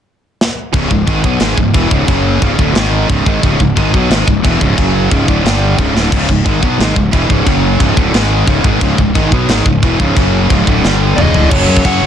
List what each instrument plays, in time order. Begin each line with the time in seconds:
0.41 snare
0.74 fingered electric bass C#1, distorted electric guitar C#2 G#2 C#3, kick, china
0.90 fingered electric bass C#1, distorted electric guitar C#2 G#2, kick
1.06 fingered electric bass G#1, distorted electric guitar G#2 D#3 G#3, kick, china
1.23 fingered electric bass B1, distorted electric guitar B2 F#3 B3, kick
1.40 fingered electric bass G#1, distorted electric guitar G#2 D#3 G#3, snare, china
1.56 fingered electric bass C#1, distorted electric guitar C#2 G#2, kick
1.74 fingered electric bass E1, distorted electric guitar E2 B2 E3, kick, china
1.90 fingered electric bass C#1, distorted electric guitar C#2 G#2 C#3, kick
2.07 fingered electric bass F#1, distorted electric guitar F#2 C#3 F#3, kick, china
2.42 fingered electric bass C#1, distorted electric guitar C#2 G#2 C#3, kick, china
2.58 fingered electric bass D1, distorted electric guitar D2 A2 D3, kick
2.75 fingered electric bass G#1, distorted electric guitar G#2 D#3 G#3, snare, china
3.08 fingered electric bass C#1, distorted electric guitar C#2 G#2 C#3, kick, china
3.26 fingered electric bass G#1, distorted electric guitar G#2 D#3 G#3, kick
3.43 fingered electric bass C#1, distorted electric guitar C#2 G#2 C#3, kick, china
3.60 fingered electric bass C#1, distorted electric guitar C#2 G#2, kick
3.76 fingered electric bass G#1, distorted electric guitar G#2 D#3 G#3, kick, china
3.93 fingered electric bass B1, distorted electric guitar B2 F#3 B3, kick
4.10 fingered electric bass G#1, distorted electric guitar G#2 D#3 G#3, snare, china
4.26 fingered electric bass C#1, distorted electric guitar C#2 G#2, kick
4.43 fingered electric bass E1, distorted electric guitar E2 B2 E3, kick, china
4.59 fingered electric bass C#1, distorted electric guitar C#2 G#2 C#3, kick
4.77 fingered electric bass F#1, distorted electric guitar F#2 C#3 F#3, kick, china
5.10 fingered electric bass C#1, distorted electric guitar C#2 G#2 C#3, kick, china
5.28 fingered electric bass D1, distorted electric guitar D2 A2 D3, kick
5.44 fingered electric bass G1, distorted electric guitar G2 D3 G3, snare, china
5.77 fingered electric bass C#1, distorted electric guitar C#2 G#2 C#3, kick, china
5.94 fingered electric bass D1, distorted electric guitar D2 A2 D3, snare
6.12 fingered electric bass C#1, distorted electric guitar C#2 G#2 C#3, kick, china, crash
6.29 fingered electric bass C#1, distorted electric guitar C#2 G#2, kick
6.45 fingered electric bass G#1, distorted electric guitar G#2 D#3 G#3, kick, china
6.62 fingered electric bass B1, distorted electric guitar B2 F#3 B3, kick
6.79 fingered electric bass G#1, distorted electric guitar G#2 D#3 G#3, snare, china
6.96 fingered electric bass C#1, distorted electric guitar C#2 G#2, kick
7.13 fingered electric bass E1, distorted electric guitar E2 B2 E3, kick, china
7.30 fingered electric bass C#1, distorted electric guitar C#2 G#2 C#3, kick
7.47 fingered electric bass F#1, distorted electric guitar F#2 C#3 F#3, kick, china
7.80 fingered electric bass C#1, distorted electric guitar C#2 G#2 C#3, kick, china
7.97 fingered electric bass D1, distorted electric guitar D2 A2 D3, kick
8.13 fingered electric bass G#1, distorted electric guitar G#2 D#3 G#3, snare, china
8.47 fingered electric bass C#1, distorted electric guitar C#2 G#2 C#3, kick, china
8.64 fingered electric bass G#1, distorted electric guitar G#2 D#3 G#3, kick
8.81 fingered electric bass C#1, distorted electric guitar C#2 G#2 C#3, kick, china
8.98 fingered electric bass C#1, distorted electric guitar C#2 G#2, kick
9.14 fingered electric bass G#1, distorted electric guitar G#2 D#3 G#3, kick, china
9.31 fingered electric bass B1, distorted electric guitar B2 F#3 B3, kick
9.49 fingered electric bass G#1, distorted electric guitar G#2 D#3 G#3, snare, china
9.65 fingered electric bass C#1, distorted electric guitar C#2 G#2, kick
9.83 fingered electric bass E1, distorted electric guitar E2 B2 E3, kick, china
9.99 fingered electric bass C#1, distorted electric guitar C#2 G#2 C#3, kick
10.16 fingered electric bass F#1, distorted electric guitar F#2 C#3 F#3, kick, china
10.49 fingered electric bass C#1, distorted electric guitar C#2 G#2 C#3, kick, china
10.67 fingered electric bass D1, distorted electric guitar D2 A2 D3, kick
10.83 fingered electric bass G1, distorted electric guitar G2 D3 G3, snare
11.17 fingered electric bass C#1, distorted electric guitar C#2 G#2 C#3, lead electric guitar G#4 D#5, mid tom
11.34 fingered electric bass D1, distorted electric guitar D2 A2 D3, floor tom
11.50 fingered electric bass F#1, distorted electric guitar F#2 C#3 F#3, lead electric guitar A4 C#5, kick, crash, china
11.68 fingered electric bass F#2
11.77 kick
11.85 fingered electric bass F#2, lead electric guitar C#5 F#5, kick, china
12.01 fingered electric bass F#1